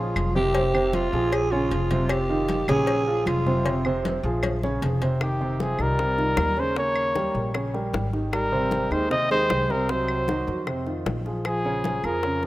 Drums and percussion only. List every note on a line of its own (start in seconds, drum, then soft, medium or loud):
0.16 cowbell medium
0.16 high conga medium
0.16 claves medium
0.36 high conga medium
0.55 cowbell loud
0.55 high conga soft
0.74 high conga soft
0.74 claves medium
0.93 cowbell medium
0.93 high conga medium
1.13 high conga soft
1.32 cowbell loud
1.32 high conga soft
1.32 claves medium
1.52 high conga soft
1.71 cowbell medium
1.71 high conga soft
1.91 cowbell medium
1.91 high conga medium
2.09 cowbell loud
2.09 claves medium
2.30 high conga soft
2.48 cowbell medium
2.48 high conga loud
2.68 cowbell medium
2.68 high conga soft
2.68 low conga medium
2.68 claves medium
2.87 cowbell loud
2.87 high conga soft
3.07 high conga soft
3.27 cowbell medium
3.27 high conga medium
3.27 claves medium
3.47 high conga medium
3.66 cowbell loud
3.85 high conga soft
3.85 claves medium
4.05 cowbell medium
4.05 high conga loud
4.25 high conga soft
4.43 cowbell loud
4.43 high conga medium
4.43 claves medium
4.63 high conga medium
4.82 cowbell medium
4.82 low conga medium
5.02 cowbell medium
5.02 low conga medium
5.21 high bongo medium
5.21 high conga soft
5.21 claves medium
5.41 high conga soft
5.60 high bongo medium
5.60 high conga loud
5.79 high bongo soft
5.79 high conga soft
5.79 claves medium
5.99 high bongo medium
5.99 high conga soft
6.18 high bongo soft
6.18 high conga soft
6.37 high bongo medium
6.37 low bongo medium
6.37 high conga medium
6.37 claves medium
6.57 high bongo soft
6.76 high bongo medium
6.76 high conga soft
6.96 high conga soft
6.96 claves medium
7.15 high bongo medium
7.15 high conga medium
7.35 high bongo soft
7.35 high conga soft
7.54 high bongo medium
7.54 high conga soft
7.54 claves medium
7.74 high bongo soft
7.74 high conga soft
7.94 high bongo medium
7.94 low bongo medium
7.94 high conga medium
8.13 high bongo soft
8.13 high conga soft
8.33 high bongo medium
8.33 high conga soft
8.33 claves medium
8.53 high conga soft
8.71 high bongo medium
8.71 high conga medium
8.92 high bongo soft
8.92 high conga soft
8.92 claves medium
9.11 high bongo medium
9.11 high conga soft
9.31 high bongo soft
9.31 high conga soft
9.50 high bongo medium
9.50 low bongo medium
9.50 high conga medium
9.50 claves medium
9.70 high bongo soft
9.89 high bongo medium
10.08 high conga soft
10.08 claves medium
10.28 high bongo medium
10.28 high conga medium
10.47 high bongo soft
10.47 high conga soft
10.67 high bongo medium
10.67 high conga soft
10.67 claves medium
10.87 high bongo soft
10.87 high conga soft
11.06 high bongo medium
11.06 low bongo medium
11.06 high conga medium
11.26 high bongo soft
11.26 high conga soft
11.45 high bongo medium
11.45 high conga soft
11.45 claves medium
11.65 high conga soft
11.84 high bongo soft
11.84 high conga loud
12.04 high bongo soft
12.04 high conga soft
12.04 claves medium
12.23 high bongo medium
12.23 high conga soft
12.43 high bongo soft
12.43 high conga soft